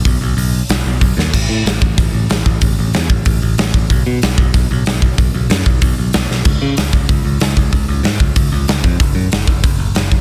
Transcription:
0.05 picked electric bass B1, kick, open hi-hat
0.21 picked electric bass B1
0.37 picked electric bass B1, open hi-hat
0.69 picked electric bass B1, snare, open hi-hat
0.85 picked electric bass B1
1.01 picked electric bass B1, kick, open hi-hat
1.17 picked electric bass D#2, snare
1.34 picked electric bass A1, kick, crash
1.49 picked electric bass A2
1.65 picked electric bass A1, snare, open hi-hat
1.81 picked electric bass A1, kick
1.98 picked electric bass A1, kick, open hi-hat
2.13 picked electric bass A1
2.30 picked electric bass A1, snare, open hi-hat
2.46 picked electric bass A1, kick
2.61 picked electric bass A1, kick, open hi-hat
2.79 picked electric bass A1
2.93 picked electric bass E2, snare, open hi-hat
3.09 picked electric bass A1, kick
3.25 picked electric bass A1, kick, open hi-hat
3.42 picked electric bass A1
3.58 picked electric bass A1, snare, open hi-hat
3.74 picked electric bass A1, kick
3.90 picked electric bass B1, kick, open hi-hat
4.06 picked electric bass B2
4.22 picked electric bass B1, snare, open hi-hat
4.38 picked electric bass B1, kick
4.54 picked electric bass B1, kick, open hi-hat
4.71 picked electric bass B1
4.86 picked electric bass B1, snare, open hi-hat
5.02 picked electric bass B1, kick
5.18 picked electric bass B1, kick, open hi-hat
5.34 picked electric bass B1
5.50 picked electric bass F#2, snare, open hi-hat
5.66 picked electric bass B1, kick
5.81 picked electric bass B1, kick, open hi-hat
5.98 picked electric bass B1
6.13 picked electric bass B1, snare, open hi-hat
6.30 picked electric bass B1, snare
6.45 picked electric bass C#2, kick, crash
6.62 picked electric bass C#3
6.77 picked electric bass C#2, snare, open hi-hat
6.93 picked electric bass C#2, kick
7.09 picked electric bass C#2, kick, open hi-hat
7.25 picked electric bass C#2
7.40 picked electric bass C#2, snare, open hi-hat
7.57 picked electric bass C#2, kick
7.72 picked electric bass C#2, kick, open hi-hat
7.88 picked electric bass C#2
8.03 picked electric bass G#2, snare, open hi-hat
8.20 picked electric bass C#2, kick
8.36 picked electric bass C#2, kick, open hi-hat
8.52 picked electric bass C#2
8.68 picked electric bass C#2, snare, open hi-hat
8.83 picked electric bass F2, kick
9.00 picked electric bass F#1, kick, open hi-hat
9.15 picked electric bass F#2
9.32 picked electric bass F#1, snare, open hi-hat
9.47 picked electric bass F#1, kick
9.64 picked electric bass F#1, kick, open hi-hat
9.79 picked electric bass F#1
9.95 picked electric bass F#1, snare, open hi-hat
10.11 picked electric bass F#1, kick

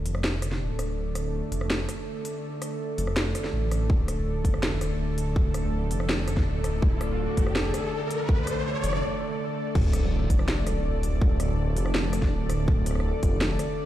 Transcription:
Already playing: synth drone D3 A3 A4 D5
0.06 detuned saw bass F1, closed hi-hat
0.15 cross-stick
0.24 snare
0.42 cross-stick, closed hi-hat
0.52 snare
0.60 detuned saw bass D1
0.79 cross-stick, closed hi-hat
1.15 cross-stick, closed hi-hat
1.52 detuned saw bass F1, closed hi-hat
1.61 cross-stick
1.70 snare
1.89 cross-stick, closed hi-hat
2.25 closed hi-hat
2.62 cross-stick, closed hi-hat
2.98 detuned saw bass F1, closed hi-hat
3.07 cross-stick
3.17 snare
3.35 cross-stick, closed hi-hat
3.44 snare
3.53 detuned saw bass A1
3.72 cross-stick, closed hi-hat
3.90 detuned saw bass D1, kick, riser
4.08 cross-stick, closed hi-hat
4.45 detuned saw bass F1, kick, closed hi-hat
4.54 cross-stick
4.63 snare
4.81 detuned saw bass D1, cross-stick, closed hi-hat
5.18 closed hi-hat
5.36 kick
5.54 cross-stick, closed hi-hat
5.91 detuned saw bass F1, closed hi-hat
6.00 cross-stick
6.09 snare
6.28 cross-stick, closed hi-hat
6.37 kick, snare
6.46 detuned saw bass D1
6.64 cross-stick, closed hi-hat
6.82 kick
7.01 cross-stick, closed hi-hat
7.37 detuned saw bass F1, kick, closed hi-hat
7.47 cross-stick
7.56 snare
7.74 cross-stick, closed hi-hat
8.11 closed hi-hat
8.29 kick
8.47 cross-stick, closed hi-hat
8.84 detuned saw bass F1, closed hi-hat
8.93 cross-stick
9.75 detuned saw bass D1, kick, crash, impact
9.93 cross-stick, closed hi-hat
10.30 detuned saw bass F1, kick, closed hi-hat
10.39 cross-stick
10.48 snare
10.66 detuned saw bass D1, cross-stick, closed hi-hat
11.03 closed hi-hat
11.22 kick
11.40 cross-stick, closed hi-hat
11.76 detuned saw bass F1, closed hi-hat
11.86 cross-stick
11.95 snare
12.13 cross-stick, closed hi-hat
12.22 kick, snare
12.31 detuned saw bass D1
12.50 cross-stick, closed hi-hat
12.68 kick
12.86 cross-stick, closed hi-hat
12.91 cross-stick
12.95 cross-stick
13.00 cross-stick
13.23 detuned saw bass F1, kick, closed hi-hat
13.41 snare
13.59 cross-stick, closed hi-hat

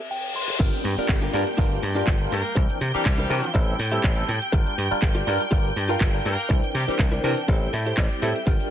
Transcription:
Already playing: reverse cymbal
0.11 clean electric guitar G5
0.35 clean electric guitar C6, muted clean electric guitar stroke
0.48 muted clean electric guitar stroke
0.59 slap bass G1, tine electric piano G3 D4 F4 A#4, violin section G5 G6, muted clean electric guitar stroke, kick, crash, downlifter
0.73 muted clean electric guitar stroke, closed hi-hat
0.84 slap bass G2, open hi-hat
0.97 tine electric piano G3 D4 F4 A#4, muted slap bass stroke, closed hi-hat
1.09 slap bass G1, kick, clap
1.22 clean electric guitar D4 F4 G4 A#4, closed hi-hat
1.33 slap bass G2, tine electric piano G3 D4 F4 A#4, open hi-hat
1.47 closed hi-hat
1.57 slap bass G1, tine electric piano G3 D4 F4 A#4, clean electric guitar D4 F4 G4 A#4, kick
1.82 slap bass G2, open hi-hat
1.95 tine electric piano G3 D4 F4 A#4, clean electric guitar D4 F4 G4 A#4, closed hi-hat
2.07 slap bass G1, kick, clap
2.21 tine electric piano G3 D4 F4 A#4, closed hi-hat
2.31 slap bass G2, horn section A#3 A#4, muted clean electric guitar stroke, open hi-hat
2.45 closed hi-hat
2.55 slap bass C2, tine electric piano E3 C4 D4 A#4, muted clean electric guitar stroke, kick
2.69 muted clean electric guitar stroke, closed hi-hat
2.81 slap bass C3, open hi-hat
2.94 tine electric piano E3 C4 D4 A#4, horn section G3 G4, muted slap bass stroke, closed hi-hat
3.05 slap bass C2, kick, clap
3.18 clean electric guitar D4 E4 A#4 C5, closed hi-hat
3.30 slap bass C3, tine electric piano E3 C4 D4 A#4, open hi-hat
3.44 closed hi-hat
3.54 slap bass A1, tine electric piano G3 C4 E4 A4, clean electric guitar E4 G4 A4 C5, kick
3.79 slap bass A2, open hi-hat
3.92 tine electric piano G3 C4 E4 A4, clean electric guitar E4 G4 A4 C5, closed hi-hat
4.04 slap bass A1, kick, clap
4.16 tine electric piano G3 C4 E4 A4, closed hi-hat
4.28 slap bass A2, muted clean electric guitar stroke, open hi-hat
4.42 closed hi-hat
4.52 slap bass G1, tine electric piano G3 D4 F4 A#4, muted clean electric guitar stroke, kick
4.66 muted clean electric guitar stroke, closed hi-hat
4.78 slap bass G2, open hi-hat
4.91 tine electric piano G3 D4 F4 A#4, muted slap bass stroke, closed hi-hat
5.02 slap bass G1, kick, clap
5.15 clean electric guitar F4 G4 A#4 D5, closed hi-hat
5.26 slap bass G2, tine electric piano G3 D4 F4 A#4, open hi-hat
5.41 closed hi-hat
5.51 slap bass G1, tine electric piano G3 D4 F4 A#4, clean electric guitar F4 G4 A#4 D5, kick
5.76 slap bass G2, open hi-hat
5.89 tine electric piano G3 D4 F4 A#4, clean electric guitar F4 G4 A#4 F5, closed hi-hat
6.01 slap bass G1, kick, clap
6.14 tine electric piano G3 D4 F4 A#4, closed hi-hat
6.24 slap bass G2, horn section A#3 A#4, muted clean electric guitar stroke, open hi-hat
6.39 closed hi-hat
6.49 slap bass C2, tine electric piano E3 C4 D4 A#4, muted clean electric guitar stroke, kick
6.62 muted clean electric guitar stroke, closed hi-hat
6.75 slap bass C3, horn section G3 G4, open hi-hat
6.88 tine electric piano E3 C4 D4 A#4, horn section G3 G4, muted slap bass stroke, closed hi-hat
6.99 slap bass C2, kick, clap
7.12 clean electric guitar E4 A#4 C5 D5, closed hi-hat
7.24 slap bass C3, tine electric piano E3 C4 D4 A#4, clean electric guitar A5, open hi-hat
7.37 closed hi-hat
7.48 slap bass A1, tine electric piano G3 C4 E4 A4, clean electric guitar E4 G4 A4 C5 G5, kick
7.62 closed hi-hat
7.73 slap bass A2, clean electric guitar E5, open hi-hat
7.86 clean electric guitar E4 G4 A4 C5, closed hi-hat
7.97 slap bass A1, tine electric piano G3 C4 E4 D5, kick, clap
8.11 closed hi-hat
8.21 slap bass A2, tine electric piano G3 C4 E4 A4, clean electric guitar E5, muted clean electric guitar stroke, open hi-hat
8.36 closed hi-hat
8.46 slap bass G1, tine electric piano G3 D4 F4 A#4, violin section G5 G6, muted clean electric guitar stroke, kick, tambourine
8.59 muted clean electric guitar stroke, closed hi-hat, tambourine

